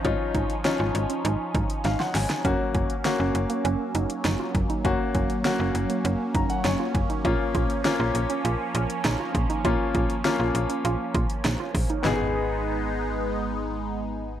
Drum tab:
HH |x-xxx-xxx-xxx-ox|x-xxx-xxx-xxx-xx|x-xxx-xxx-xxx-xx|x-xxx-xxx-xxx-xx|
CP |----------------|----------------|----------------|----------------|
SD |----o-------oooo|----o-------o---|----o-------o---|----o-------o---|
FT |----------------|----------------|----------------|----------------|
BD |o-o-------o-----|o-o-----------o-|o-o-------o---o-|o-o-----------o-|

HH |x-xxx-xxx-xxx-ox|----------------|
CP |----------------|x---------------|
SD |----o-------o---|o---------------|
FT |----------------|o---------------|
BD |o-o-------o---o-|----------------|